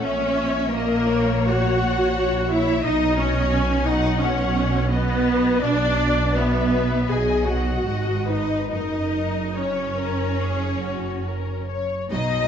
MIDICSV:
0, 0, Header, 1, 6, 480
1, 0, Start_track
1, 0, Key_signature, 5, "major"
1, 0, Tempo, 696056
1, 12, Time_signature, 4, 2, 24, 8
1, 492, Tempo, 764331
1, 972, Tempo, 684151
1, 3372, Tempo, 732601
1, 4812, Tempo, 772201
1, 5292, Tempo, 843882
1, 7914, End_track
2, 0, Start_track
2, 0, Title_t, "Violin section"
2, 0, Program_c, 0, 48
2, 13, Note_on_c, 0, 73, 98
2, 492, Note_on_c, 0, 70, 107
2, 493, Note_off_c, 0, 73, 0
2, 972, Note_off_c, 0, 70, 0
2, 973, Note_on_c, 0, 78, 104
2, 1689, Note_on_c, 0, 76, 106
2, 1691, Note_off_c, 0, 78, 0
2, 1926, Note_off_c, 0, 76, 0
2, 1933, Note_on_c, 0, 75, 103
2, 2169, Note_on_c, 0, 73, 105
2, 2173, Note_off_c, 0, 75, 0
2, 2637, Note_off_c, 0, 73, 0
2, 2647, Note_on_c, 0, 75, 93
2, 2880, Note_on_c, 0, 73, 93
2, 2883, Note_off_c, 0, 75, 0
2, 3369, Note_off_c, 0, 73, 0
2, 3375, Note_on_c, 0, 71, 108
2, 3838, Note_on_c, 0, 74, 118
2, 3841, Note_off_c, 0, 71, 0
2, 4325, Note_on_c, 0, 71, 100
2, 4327, Note_off_c, 0, 74, 0
2, 4808, Note_off_c, 0, 71, 0
2, 4808, Note_on_c, 0, 80, 98
2, 5040, Note_on_c, 0, 78, 84
2, 5045, Note_off_c, 0, 80, 0
2, 5524, Note_on_c, 0, 75, 90
2, 5525, Note_off_c, 0, 78, 0
2, 5767, Note_off_c, 0, 75, 0
2, 5774, Note_on_c, 0, 75, 91
2, 6247, Note_off_c, 0, 75, 0
2, 6257, Note_on_c, 0, 73, 84
2, 7463, Note_off_c, 0, 73, 0
2, 7703, Note_on_c, 0, 75, 120
2, 7914, Note_off_c, 0, 75, 0
2, 7914, End_track
3, 0, Start_track
3, 0, Title_t, "Violin section"
3, 0, Program_c, 1, 48
3, 4, Note_on_c, 1, 76, 78
3, 485, Note_on_c, 1, 75, 77
3, 488, Note_off_c, 1, 76, 0
3, 726, Note_on_c, 1, 73, 87
3, 727, Note_off_c, 1, 75, 0
3, 1443, Note_off_c, 1, 73, 0
3, 1451, Note_on_c, 1, 73, 79
3, 1681, Note_off_c, 1, 73, 0
3, 1689, Note_on_c, 1, 73, 78
3, 1926, Note_off_c, 1, 73, 0
3, 1928, Note_on_c, 1, 75, 80
3, 2400, Note_off_c, 1, 75, 0
3, 2408, Note_on_c, 1, 80, 88
3, 2645, Note_on_c, 1, 78, 104
3, 2647, Note_off_c, 1, 80, 0
3, 2869, Note_off_c, 1, 78, 0
3, 2878, Note_on_c, 1, 78, 82
3, 3358, Note_off_c, 1, 78, 0
3, 3365, Note_on_c, 1, 75, 73
3, 3836, Note_off_c, 1, 75, 0
3, 3847, Note_on_c, 1, 74, 81
3, 4331, Note_off_c, 1, 74, 0
3, 4335, Note_on_c, 1, 76, 74
3, 4813, Note_off_c, 1, 76, 0
3, 4818, Note_on_c, 1, 75, 72
3, 5282, Note_off_c, 1, 75, 0
3, 5290, Note_on_c, 1, 75, 72
3, 5522, Note_off_c, 1, 75, 0
3, 5525, Note_on_c, 1, 71, 68
3, 5775, Note_off_c, 1, 71, 0
3, 5779, Note_on_c, 1, 70, 61
3, 6213, Note_off_c, 1, 70, 0
3, 6253, Note_on_c, 1, 73, 78
3, 6473, Note_off_c, 1, 73, 0
3, 6485, Note_on_c, 1, 70, 75
3, 6728, Note_on_c, 1, 68, 77
3, 6730, Note_off_c, 1, 70, 0
3, 6974, Note_on_c, 1, 66, 63
3, 6977, Note_off_c, 1, 68, 0
3, 7219, Note_off_c, 1, 66, 0
3, 7222, Note_on_c, 1, 70, 68
3, 7463, Note_on_c, 1, 73, 71
3, 7464, Note_off_c, 1, 70, 0
3, 7696, Note_off_c, 1, 73, 0
3, 7701, Note_on_c, 1, 63, 80
3, 7914, Note_off_c, 1, 63, 0
3, 7914, End_track
4, 0, Start_track
4, 0, Title_t, "Viola section"
4, 0, Program_c, 2, 48
4, 13, Note_on_c, 2, 61, 111
4, 483, Note_off_c, 2, 61, 0
4, 497, Note_on_c, 2, 58, 127
4, 965, Note_off_c, 2, 58, 0
4, 971, Note_on_c, 2, 66, 110
4, 1690, Note_off_c, 2, 66, 0
4, 1698, Note_on_c, 2, 64, 121
4, 1932, Note_on_c, 2, 63, 123
4, 1935, Note_off_c, 2, 64, 0
4, 2167, Note_off_c, 2, 63, 0
4, 2171, Note_on_c, 2, 61, 114
4, 2648, Note_off_c, 2, 61, 0
4, 2648, Note_on_c, 2, 63, 120
4, 2881, Note_on_c, 2, 61, 107
4, 2884, Note_off_c, 2, 63, 0
4, 3370, Note_off_c, 2, 61, 0
4, 3371, Note_on_c, 2, 59, 121
4, 3849, Note_off_c, 2, 59, 0
4, 3849, Note_on_c, 2, 62, 127
4, 4323, Note_off_c, 2, 62, 0
4, 4330, Note_on_c, 2, 59, 112
4, 4811, Note_off_c, 2, 59, 0
4, 4812, Note_on_c, 2, 68, 96
4, 5047, Note_off_c, 2, 68, 0
4, 5049, Note_on_c, 2, 66, 93
4, 5523, Note_on_c, 2, 63, 98
4, 5529, Note_off_c, 2, 66, 0
4, 5766, Note_off_c, 2, 63, 0
4, 5773, Note_on_c, 2, 63, 94
4, 6247, Note_off_c, 2, 63, 0
4, 6256, Note_on_c, 2, 61, 95
4, 7463, Note_off_c, 2, 61, 0
4, 7703, Note_on_c, 2, 59, 76
4, 7704, Note_on_c, 2, 54, 80
4, 7749, Note_off_c, 2, 59, 0
4, 7750, Note_off_c, 2, 54, 0
4, 7914, End_track
5, 0, Start_track
5, 0, Title_t, "Cello section"
5, 0, Program_c, 3, 48
5, 12, Note_on_c, 3, 46, 78
5, 1904, Note_off_c, 3, 46, 0
5, 1927, Note_on_c, 3, 47, 79
5, 3835, Note_off_c, 3, 47, 0
5, 3843, Note_on_c, 3, 47, 89
5, 4790, Note_off_c, 3, 47, 0
5, 4809, Note_on_c, 3, 47, 77
5, 5281, Note_off_c, 3, 47, 0
5, 5288, Note_on_c, 3, 44, 80
5, 5765, Note_off_c, 3, 44, 0
5, 5772, Note_on_c, 3, 42, 71
5, 7582, Note_off_c, 3, 42, 0
5, 7705, Note_on_c, 3, 47, 84
5, 7914, Note_off_c, 3, 47, 0
5, 7914, End_track
6, 0, Start_track
6, 0, Title_t, "Double bass section"
6, 0, Program_c, 4, 48
6, 13, Note_on_c, 4, 34, 80
6, 1904, Note_off_c, 4, 34, 0
6, 1931, Note_on_c, 4, 35, 97
6, 3840, Note_off_c, 4, 35, 0
6, 3848, Note_on_c, 4, 35, 88
6, 4792, Note_off_c, 4, 35, 0
6, 4811, Note_on_c, 4, 35, 94
6, 5282, Note_off_c, 4, 35, 0
6, 5295, Note_on_c, 4, 32, 70
6, 5768, Note_off_c, 4, 32, 0
6, 5778, Note_on_c, 4, 30, 78
6, 7585, Note_off_c, 4, 30, 0
6, 7707, Note_on_c, 4, 35, 88
6, 7914, Note_off_c, 4, 35, 0
6, 7914, End_track
0, 0, End_of_file